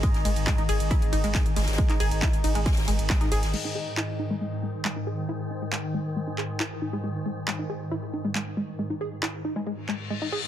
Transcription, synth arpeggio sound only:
0.03 G#3
0.25 G#3
0.47 G#3
0.58 D#4
0.69 G#4
0.91 E4
1.13 D#4
1.24 G#3
1.35 G#3
1.56 G#3
1.78 G#3
1.90 D#4
2.00 G#4
2.22 E4
2.44 D#4
2.55 G#3
2.66 G#3
2.88 G#3
3.10 G#3
3.21 D#4
3.32 G#4
3.54 G#3
3.65 D#4
3.75 G#4
3.97 E4
4.19 D#4
4.31 G#3
4.41 G#3
4.63 G#3
4.85 G#3
4.96 D#4
5.07 G#4
5.29 E4
5.51 D#4
5.62 G#3
5.72 G#3
5.94 G#3
6.16 G#3
6.27 D#4
6.38 G#4
6.60 E4
6.82 D#4
6.93 G#3
7.04 G#3
7.26 G#3
7.48 G#3
7.59 D#4
7.70 G#4
7.91 E4
8.13 D#4
8.25 G#3
8.35 G#3
8.57 G#3
8.79 G#3
8.90 D#4
9.01 G#4
9.23 E4
9.45 D#4
9.56 G#3
9.67 G#3
9.89 G#3
10.11 G#3
10.22 D#4
10.32 G#4

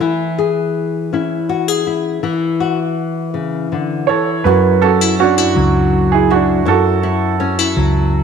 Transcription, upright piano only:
4.07 A4 C#5
4.44 F#4 B4
4.82 F#4 A4
5.20 D4 F#4
6.12 E4 G#4
6.31 D4 F#4
6.68 F#4 A4

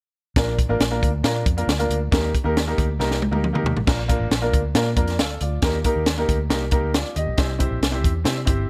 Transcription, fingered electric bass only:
0.36 A#1
0.69 A1
0.80 A#1
1.02 D2
1.23 A#2
1.46 F2
1.67 D2
1.89 D2
2.12 D#2
2.44 D#2
2.78 D2
2.99 C2
3.31 D2
3.64 D#2
3.75 A1
3.87 A#1
4.20 A1
4.30 A#1
4.53 D2
4.75 A#2
4.96 F2
5.19 D2
5.41 D2
5.62 D#2
5.96 D#2
6.29 D2
6.50 C2
6.83 D2
7.16 D#2
7.27 B1
7.38 C2
7.71 A#1
7.81 C2
8.04 E2
8.25 C3
8.47 G1

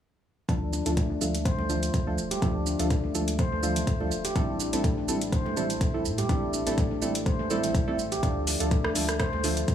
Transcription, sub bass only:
0.49 D2
0.86 D2
1.21 D2
1.58 D2
1.94 D2
2.18 D1
2.42 D2
2.79 D2
3.15 D2
3.52 D2
3.87 D2
4.11 D1
4.36 A1
4.73 A1
5.08 A1
5.46 A1
5.81 A1
6.05 A2
6.29 A1
6.67 A1
7.02 A1
7.39 A1
7.75 G1
7.99 A1
8.23 D2
8.60 D2
8.95 D2
9.33 D2
9.68 D2

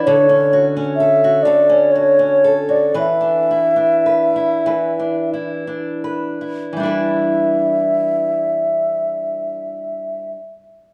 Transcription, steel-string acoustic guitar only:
Already playing: D4 E4
0.07 D3 A4
0.29 C#4
0.53 F#4
0.77 C#4
1.00 A4
1.24 F#4
1.45 D3 A4
1.69 C#4
1.95 F#4
2.19 C#4
2.44 A4
2.69 F#4
2.94 E3 B4
3.21 D4
3.51 E4
3.76 D4
4.06 B4
4.36 E4
4.66 E3 B4
4.99 D4
5.33 E4
5.67 D4
6.04 B4
6.41 E4
6.73 E3 G3
6.80 D4 E4
6.85 B4

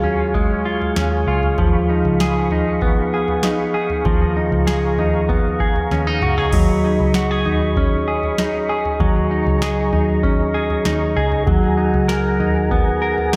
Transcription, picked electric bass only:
0.04 D#2
0.97 D#2
1.27 C#2
1.58 D#2
2.05 C#2
2.52 D#2
4.06 D#2
4.52 C#2
4.98 D#2
5.91 D#2
6.22 C#2
6.53 D#2
7.00 C#2
7.46 D#2
9.00 D#2
9.46 C#2
9.93 D#2
10.86 D#2
11.16 C#2
11.47 D#2
11.94 C#2
12.40 D#2

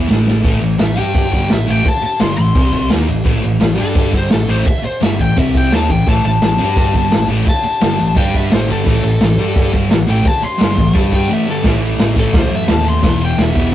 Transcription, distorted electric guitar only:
0.07 A2 E3 A3
0.42 A2 E3 A3
0.60 A2 E3
0.78 A2 E3
0.96 G3 D4 G4
1.31 G2 D3 G3
1.50 A2 E3
1.67 A2 E3 A3
1.84 muted distorted electric guitar stroke
2.02 muted distorted electric guitar stroke
2.20 G2 D3 G3
2.37 A2 E3
2.55 C3 G3 C4
2.90 D#3 A#3 D#4
3.08 A2 E3
3.24 A2 E3 A3
3.42 A2 E3
3.60 A2 E3
3.76 G3 D4 G4
4.12 G2 D3 G3
4.30 A2 E3
4.48 A2 E3 A3
4.66 muted distorted electric guitar stroke
4.83 muted distorted electric guitar stroke
5.01 G2 D3 G3
5.19 A2 E3
5.36 C3 G3 C4
5.71 D#3 A#3 D#4
5.90 A2 E3
6.06 A2 E3 A3
6.24 A2 E3
6.42 A2 E3
6.58 G3 D4 G4
6.92 G2 D3 G3
7.10 A2 E3
7.28 A2 E3 A3
7.46 muted distorted electric guitar stroke
7.63 muted distorted electric guitar stroke
7.81 G2 D3 G3
7.99 A2 E3
8.15 G3 D4 G4
8.50 A2 E3 A3
8.68 G2 D3 G3
8.85 A2 E3 A3
9.04 A2 E3
9.21 A2 E3
9.38 G3 D4 G4
9.72 G2 D3 G3
9.90 A2 E3
10.07 A2 E3 A3
10.26 muted distorted electric guitar stroke
10.42 muted distorted electric guitar stroke
10.58 G2 D3 G3
10.76 A2 E3
10.93 G3 D4 G4
11.28 A2 E3 A3
11.47 G2 D3 G3
11.63 A2 E3
11.68 A3
12.16 E3 A3
12.21 A2
13.01 E2 B2
13.06 E3
13.53 B2 E3
13.59 E2

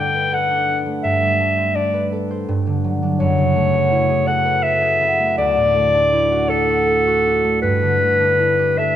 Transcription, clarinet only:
Already playing: G5
0.34 F#5
1.03 E5
1.75 D5
3.19 C#5
4.27 F#5
4.63 E5
5.38 D5
6.49 A4
7.62 B4
8.78 E5

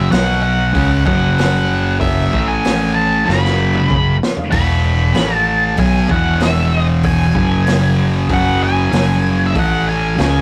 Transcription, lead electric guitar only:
Already playing: E5
0.12 F#5
0.43 F#5
1.06 F#5
2.01 E5
2.48 G#5
2.95 A5
3.26 B5
4.52 B5
5.35 A5
5.80 G#5
6.12 F#5
6.43 E5
6.75 D#5
7.05 G#5
8.33 F#5
8.63 G#5
9.47 E5
9.59 F#5
9.89 G#5

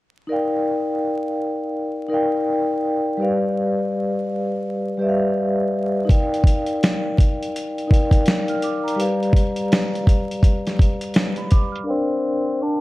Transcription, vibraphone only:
0.27 D#4 A#4 D5
0.32 F5 G5
2.08 D#4 A#4 D5
2.13 F5 G5
3.17 G3 G4 B4
3.21 D5 F5
4.97 G3 G4 B4
5.01 D5 E5
5.09 F5
6.05 D#4 A#4 D5
6.09 F5 G5
7.88 D#4 A#4 D5
7.92 F5 G5
8.49 F6
8.64 D6
8.84 A#5
8.96 G3 G4 B4
9.00 D5 F5
11.37 B5
11.51 D6
11.72 F6
11.84 D4 A#4 D5 F5
11.89 G5

